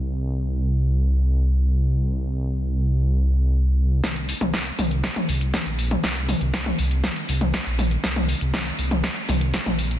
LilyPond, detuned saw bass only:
\new Staff \with { instrumentName = "Detuned saw bass" } { \clef bass \time 4/4 \key bes \mixolydian \tempo 4 = 120 c,1~ | c,1 | c,8 r16 c,8 r16 c,8 r8 c,8 r16 bes,,8 r16 | c,8 r16 c,8 r16 c,8 r8 c,8 r16 bes,,8 r16 |
c,8 r16 c,8 r16 c,8 r8 c,8 r16 bes,,8 r16 | }